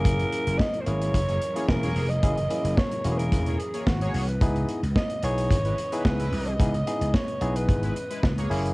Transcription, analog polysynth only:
1.28 A#3 G#4 C#5
1.55 A#3 G#4 C#5
1.83 A#3 G#4 C#5
3.47 A#3 G#4 C#5
3.74 A#3 G#4 C#5
4.01 A#3 G#4 C#5
5.64 G#3 E4 B4
5.91 G#3 E4 B4
6.19 G#3 E4 B4
7.83 G#3 E4 B4
8.10 G#3 E4 B4
8.38 A#3 G#4 C#5

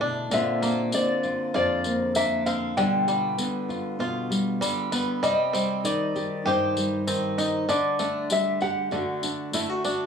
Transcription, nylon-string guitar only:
Already playing: D3 A3 D4 E4
0.01 B2
0.31 A#2 D3 A#3 C4 F4
0.62 A#3
0.93 D3 C4
1.24 F4
1.55 F2 C4
1.85 A#3
2.16 D3
2.46 C4
2.77 B2 D3 G3 B3 F4
3.08 G3
3.38 D3 B3
3.69 F4
3.99 B2 B3
4.30 G3
4.61 D3
4.92 B3
5.22 C3
5.54 G3
5.84 D#3 D#4
6.15 G4
6.45 G2 D#4
6.77 G3
7.07 D#3
7.38 D#4
7.69 D3
8.00 D4
8.30 G3 G4
8.62 G4
8.92 D3 A3 D4 F#4
9.23 D4
9.53 A3 E4
9.70 F#4
9.85 F#4

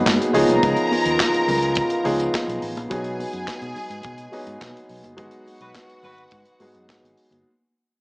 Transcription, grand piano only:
Already playing: F#3 G#3 A#3 B3 D#4 G#4
0.33 F3 B3 C#4 D#4 G#4
2.04 F3 B3 C#4 D#4 G#4
2.90 F#3 B3 C#4 D#4 G#4
4.32 F#3 B3 C#4 D#4 G#4
5.17 F#3 G#3 B3 D#4 G#4
6.60 F#3 G#3 B3 D#4 G#4

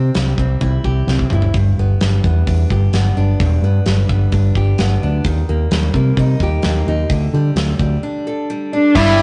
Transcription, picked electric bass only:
0.16 C2
0.38 C2
0.61 C2
0.85 C2
1.07 C2
1.31 G1
1.55 G1
1.78 G1
2.02 G1
2.24 E2
2.48 E2
2.70 G1
2.93 G1
3.17 G1
3.40 E1
3.62 G2
3.86 G1
4.10 G1
4.33 G1
4.55 G1
4.80 G1
5.03 D2
5.25 D#2
5.49 D#2
5.72 D#2
5.94 C3
6.17 C3
6.40 D#2
6.65 D#2
6.87 D#2
7.10 D2
7.34 D3
7.56 D2
7.80 D2
8.95 G1

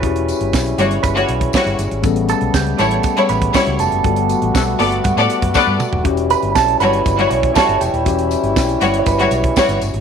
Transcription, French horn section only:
Already playing: C#3 G3 C#4 E4
2.03 G3 A3 B3
4.04 A3 F#4
6.05 E3 G3 C#4 E4

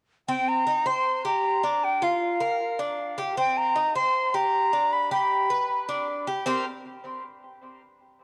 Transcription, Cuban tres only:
0.28 C4
0.67 D#4
0.86 C5
1.25 G4
1.64 D4
2.02 F4
2.40 A#4
2.79 D4
3.18 G4
3.37 C4
3.76 D#4
3.95 C5
4.34 G4
4.73 D4
5.11 G4
5.50 B4
5.89 D4
6.27 G4
6.46 C4 G4 A#4

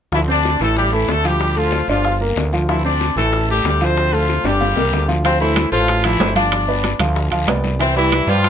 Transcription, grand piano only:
0.12 F3 F4
0.28 C4 C5
0.61 E3 E4
0.93 A3 A4
1.25 F3 F4
1.56 A3 A4
1.89 D4 D5
2.05 F4 F5
2.21 A#3 A#4
2.53 F3 F4
2.69 F3 F4
2.84 C4 C5
3.16 E3 E4
3.49 A3 A4
3.81 F3 F4
4.13 A3 A4
4.45 D4 D5
4.60 F4 F5
4.76 A#3 A#4
5.08 F3 F4
5.24 F3 F4 F5
5.41 A3 A4 C5
5.72 A3 A4 C5
6.05 F3 F4 F5
6.20 A3 A4 C5
6.36 F3 F4 F5
6.68 B3 B4 D5
6.99 F3 F4 F5
7.31 F3 F4 F5
7.48 B3 B4 D5
7.79 E3 E4 E5
7.96 G3 G4 B4
8.28 G3 G4 B4

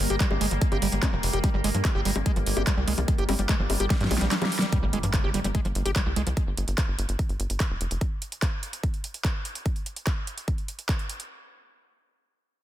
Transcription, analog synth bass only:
0.10 G1
0.31 G1
0.41 G1
0.51 G1
0.72 G1
0.82 G1
0.92 G1
1.13 F1
1.23 F1
1.33 F1
1.54 G1
1.64 G1
1.75 G2
1.95 G1
2.05 G1
2.16 G1
2.36 G1
2.46 G1
2.57 G1
2.77 C2
2.88 C2
2.98 C2
3.18 G1
3.29 G1
3.39 G1
3.60 G1
3.70 G1
3.80 G1
4.01 G2
4.11 A#1
4.21 A#1
4.83 G1
4.93 G1
5.03 G2
5.24 G1
5.34 G1
5.44 G1
5.65 G1
5.75 G1
5.86 G1
6.06 C2
6.16 C2
6.27 C2
6.47 G1
6.57 G1
6.68 G1
6.88 G1
6.99 G1
7.09 G1
7.29 G1
7.40 G1
7.50 G1
7.70 F1
7.81 F1
7.91 F1

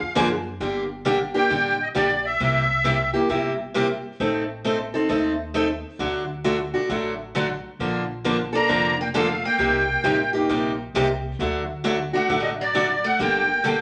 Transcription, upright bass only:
0.01 muted upright bass stroke
0.16 F#2
0.60 G1
1.50 A1
1.95 A#1
2.40 C2
3.30 G1
4.20 A1
5.09 D#2
5.99 D2
6.89 A1
7.79 A#1
8.69 F1
9.59 C2
10.04 A1
10.50 A#1
10.94 C2
11.39 D2
12.29 A1
13.19 G1

